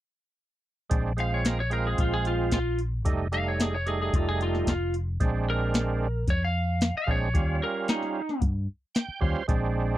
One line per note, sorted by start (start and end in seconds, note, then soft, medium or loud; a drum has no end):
0.90 1.95 A#1 medium
0.90 1.12 G#3 medium
0.90 1.13 C4 medium
0.90 1.13 D4 medium
0.90 kick loud
0.90 closed hi-hat medium
1.17 1.61 G#3 medium
1.17 1.62 C4 medium
1.17 1.62 F4 medium
1.17 1.32 F5 medium
1.17 closed hi-hat medium
1.34 1.46 C#5 medium
1.45 1.59 A#4 medium
1.45 snare loud
1.45 closed hi-hat medium
1.60 1.72 C#5 medium
1.70 2.59 G#3 medium
1.70 2.59 C4 medium
1.70 2.59 F4 medium
1.70 1.85 A#4 medium
1.70 closed hi-hat medium
1.87 1.99 G#4 medium
1.98 2.48 A#1 medium
1.98 2.14 F4 medium
1.98 kick medium
1.98 closed hi-hat medium
2.14 2.26 G#4 medium
2.25 2.52 F4 medium
2.25 closed hi-hat medium
2.51 3.06 A#1 medium
2.51 2.79 F4 medium
2.51 kick medium
2.51 snare medium
2.51 closed hi-hat medium
2.79 closed hi-hat medium
3.05 4.09 F1 medium
3.05 3.27 G3 medium
3.05 3.28 A3 medium
3.05 3.28 D#4 medium
3.05 kick medium
3.05 closed hi-hat medium
3.32 3.76 G3 medium
3.32 3.76 A3 medium
3.32 3.77 D#4 medium
3.32 3.47 F5 medium
3.32 closed hi-hat medium
3.48 3.60 C#5 medium
3.60 3.74 G#4 medium
3.60 snare loud
3.60 closed hi-hat medium
3.74 3.87 C#5 medium
3.86 4.74 G3 medium
3.86 4.74 A3 medium
3.86 4.74 D#4 medium
3.86 4.00 G#4 medium
3.86 closed hi-hat medium
4.02 4.15 G#4 medium
4.13 4.63 F1 medium
4.13 4.29 F4 medium
4.13 kick medium
4.13 closed hi-hat medium
4.29 4.41 G#4 medium
4.41 4.67 F4 medium
4.41 closed hi-hat medium
4.55 snare soft
4.67 5.16 F1 medium
4.67 4.94 F4 medium
4.67 kick medium
4.67 snare medium
4.67 closed hi-hat medium
4.94 closed hi-hat medium
5.20 6.24 A#1 medium
5.20 6.08 G#3 medium
5.20 6.08 C4 medium
5.20 6.08 D4 medium
5.20 kick loud
5.20 closed hi-hat medium
5.50 6.26 A#4 medium
5.74 snare loud
5.74 closed hi-hat medium
6.27 6.90 F2 medium
6.27 6.42 C#5 medium
6.27 kick medium
6.27 closed hi-hat medium
6.45 6.95 F5 medium
6.81 snare loud
6.81 closed hi-hat medium
6.94 7.09 F5 medium
6.94 muted fingered electric bass stroke soft
7.07 7.32 A#1 medium
7.07 7.29 G#3 medium
7.07 7.30 C4 medium
7.07 7.30 D4 medium
7.07 7.61 C#5 medium
7.07 kick medium
7.34 7.59 D#2 medium
7.34 8.22 G3 medium
7.34 8.22 C#4 medium
7.34 8.22 F4 medium
7.34 kick loud
7.34 closed hi-hat medium
7.63 7.88 A#4 medium
7.88 8.41 D#4 medium
7.88 snare loud
7.88 closed hi-hat medium
8.03 snare soft
8.29 snare soft
8.42 8.66 G2 medium
8.42 kick medium
8.42 closed hi-hat medium
8.95 9.20 G5 medium
8.95 snare loud
8.95 closed hi-hat medium
9.08 muted fingered electric bass stroke soft
9.21 9.34 D#2 medium
9.21 9.43 G3 medium
9.21 9.43 C#4 medium
9.21 9.44 F4 medium
9.21 9.46 C5 medium
9.21 kick medium
9.48 9.98 A#1 medium
9.48 9.98 G#3 medium
9.48 9.98 C4 medium
9.48 9.98 D4 medium
9.48 kick medium
9.48 closed hi-hat medium